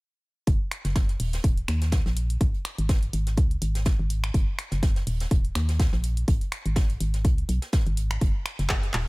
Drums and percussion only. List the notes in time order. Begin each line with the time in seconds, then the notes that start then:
0.47 kick, closed hi-hat
0.71 finger snap, closed hi-hat
0.85 snare, closed hi-hat
0.96 kick, snare, closed hi-hat
1.09 snare, closed hi-hat
1.20 closed hi-hat, open hi-hat
1.33 snare, closed hi-hat
1.44 kick, closed hi-hat
1.57 closed hi-hat
1.68 finger snap, snare, closed hi-hat
1.82 snare, closed hi-hat
1.92 kick, snare, closed hi-hat
2.06 snare
2.17 closed hi-hat
2.30 closed hi-hat
2.40 kick, closed hi-hat
2.54 closed hi-hat
2.65 finger snap, closed hi-hat
2.78 closed hi-hat
2.89 kick, snare, closed hi-hat
3.02 closed hi-hat
3.13 closed hi-hat
3.27 snare, closed hi-hat
3.37 kick, closed hi-hat
3.51 closed hi-hat
3.62 closed hi-hat
3.75 snare, closed hi-hat
3.85 kick, snare, closed hi-hat
4.10 closed hi-hat
4.24 finger snap, closed hi-hat
4.34 kick, closed hi-hat
4.59 finger snap, closed hi-hat
4.71 snare, closed hi-hat
4.83 kick, snare, closed hi-hat
4.96 snare, closed hi-hat
5.07 closed hi-hat, open hi-hat
5.20 snare, closed hi-hat
5.31 kick, closed hi-hat
5.45 closed hi-hat
5.55 finger snap, snare, closed hi-hat
5.69 snare, closed hi-hat
5.79 kick, snare, closed hi-hat
5.93 snare
6.04 closed hi-hat
6.17 closed hi-hat
6.28 kick, closed hi-hat
6.41 closed hi-hat
6.52 finger snap, closed hi-hat
6.66 closed hi-hat
6.76 kick, snare, closed hi-hat
6.89 closed hi-hat
7.00 closed hi-hat
7.14 snare, closed hi-hat
7.25 kick, closed hi-hat
7.38 closed hi-hat
7.49 closed hi-hat
7.62 snare, closed hi-hat
7.72 kick, snare, closed hi-hat
7.87 closed hi-hat
7.97 closed hi-hat
8.11 finger snap, closed hi-hat
8.21 kick, closed hi-hat
8.45 finger snap, closed hi-hat
8.59 snare, closed hi-hat
8.69 kick, snare, clap, closed hi-hat
8.83 snare, closed hi-hat
8.93 clap, closed hi-hat, open hi-hat